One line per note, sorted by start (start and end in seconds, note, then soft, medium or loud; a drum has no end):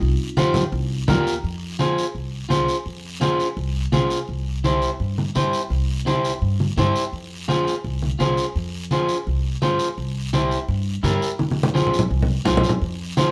0.00 0.16 C2 medium
0.00 1.05 C#4 medium
0.00 1.05 F4 loud
0.00 long guiro medium
0.37 0.65 F2 medium
0.37 0.62 F4 loud
0.37 0.62 G4 medium
0.37 0.62 C5 medium
0.37 high conga medium
0.37 short guiro medium
0.54 high conga medium
0.54 low conga medium
0.54 short guiro medium
0.72 1.01 C2 loud
0.72 long guiro medium
1.08 1.37 D#2 loud
1.08 1.33 F4 medium
1.08 1.33 G4 medium
1.08 1.33 A#4 loud
1.08 high conga medium
1.08 low conga medium
1.08 short guiro medium
1.27 short guiro medium
1.44 2.01 F2 medium
1.44 long guiro medium
1.79 2.04 F4 medium
1.79 2.04 G#4 medium
1.79 2.04 C5 medium
1.79 high conga medium
1.79 short guiro medium
1.98 short guiro medium
2.15 2.43 C2 medium
2.15 long guiro medium
2.49 2.65 C2 medium
2.49 2.75 F4 medium
2.49 2.75 G#4 medium
2.49 2.75 C5 medium
2.49 high conga medium
2.49 short guiro medium
2.68 short guiro medium
2.86 3.43 F2 medium
2.86 long guiro medium
3.21 3.46 F4 medium
3.21 3.46 G#4 medium
3.21 3.47 C5 medium
3.21 high conga medium
3.21 short guiro medium
3.40 short guiro medium
3.57 3.85 C2 medium
3.57 long guiro medium
3.92 4.07 C2 medium
3.92 4.18 F4 medium
3.92 4.18 G#4 medium
3.92 4.18 C5 medium
3.92 high conga medium
3.92 short guiro medium
4.10 short guiro medium
4.28 4.85 C2 medium
4.28 long guiro medium
4.64 4.89 E4 medium
4.64 4.89 G4 medium
4.64 4.90 C5 loud
4.64 high conga medium
4.64 short guiro medium
4.82 short guiro medium
5.00 5.28 G2 medium
5.00 long guiro medium
5.18 high conga medium
5.35 5.50 G2 medium
5.35 5.60 E4 medium
5.35 5.60 G4 medium
5.35 5.61 C5 medium
5.35 high conga medium
5.35 short guiro medium
5.53 short guiro medium
5.70 6.27 C2 medium
5.70 long guiro medium
6.06 6.31 E4 medium
6.06 6.31 G4 medium
6.06 6.32 C5 medium
6.06 high conga medium
6.06 short guiro medium
6.25 short guiro medium
6.42 6.70 G2 medium
6.42 long guiro medium
6.60 high conga medium
6.77 6.92 G2 medium
6.77 7.02 E4 medium
6.77 7.03 G4 medium
6.77 7.03 C5 medium
6.77 high conga medium
6.77 short guiro medium
6.96 short guiro medium
7.13 7.70 F2 medium
7.13 long guiro medium
7.48 7.73 F4 medium
7.48 7.73 G#4 medium
7.48 7.73 C5 medium
7.48 high conga medium
7.48 short guiro medium
7.67 short guiro medium
7.84 8.13 C2 medium
7.84 long guiro medium
8.02 high conga medium
8.19 8.34 C2 medium
8.19 8.44 F4 medium
8.19 8.45 G#4 medium
8.19 8.45 C5 medium
8.19 high conga medium
8.19 short guiro medium
8.37 short guiro medium
8.56 9.12 F2 medium
8.56 long guiro medium
8.91 9.16 F4 medium
8.91 9.16 G#4 medium
8.91 9.16 C5 medium
8.91 high conga medium
8.91 short guiro medium
9.09 short guiro medium
9.27 9.55 C2 medium
9.27 long guiro medium
9.62 9.76 G2 medium
9.62 9.87 F4 medium
9.62 9.87 G#4 medium
9.62 9.87 C5 medium
9.62 high conga medium
9.62 short guiro medium
9.79 short guiro medium
9.98 10.54 C2 medium
9.98 long guiro medium
10.33 10.58 E4 medium
10.33 10.58 G4 medium
10.33 10.58 C5 medium
10.33 high conga medium
10.33 short guiro medium
10.51 short guiro medium
10.68 10.97 G2 medium
10.68 long guiro medium
11.03 11.18 G2 medium
11.03 11.28 E4 medium
11.03 11.29 G4 medium
11.03 11.29 A#4 medium
11.03 high conga medium
11.03 short guiro medium
11.22 short guiro medium
11.39 11.96 F2 medium
11.39 high conga medium
11.39 long guiro medium
11.51 high conga medium
11.63 high conga medium
11.74 11.99 F4 medium
11.74 12.00 G#4 medium
11.74 12.00 C5 medium
11.74 high conga medium
11.74 short guiro medium
11.87 low conga medium
11.94 short guiro medium
11.99 low conga medium
12.10 12.39 C2 medium
12.10 long guiro medium
12.22 low conga medium
12.45 12.60 C2 medium
12.45 12.70 F4 medium
12.45 12.71 G#4 medium
12.45 12.71 C5 medium
12.45 low conga medium
12.45 short guiro medium
12.57 low conga medium
12.64 short guiro medium
12.69 low conga medium
12.82 13.31 F2 medium
12.82 long guiro medium
13.17 13.31 F4 medium
13.17 13.31 G#4 medium
13.17 13.31 C5 loud
13.17 high conga medium
13.17 short guiro medium